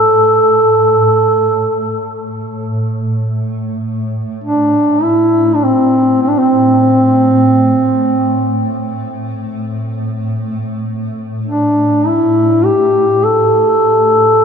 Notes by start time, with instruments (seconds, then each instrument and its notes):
Already playing: ambient pad A2, duduk A4
2.59 ambient pad A2
4.44 duduk D4
5.02 duduk E4
5.55 duduk D4
5.64 duduk C4
6.22 duduk C4
6.28 duduk D4
6.38 duduk C4
11.47 duduk D4
12.07 duduk E4
12.65 duduk G4
13.24 duduk A4